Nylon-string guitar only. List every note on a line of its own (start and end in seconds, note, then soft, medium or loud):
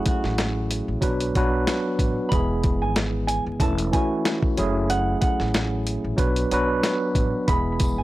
0.08 2.28 F#4 medium
2.29 2.77 B5 loud
2.82 2.95 G#5 medium
3.27 3.44 G#5 medium
3.60 3.90 A5 medium
3.93 4.40 G#5 medium
4.90 5.19 F#5 loud
5.21 7.43 F#5 medium
7.48 7.95 B5 loud
7.98 8.03 G#5 medium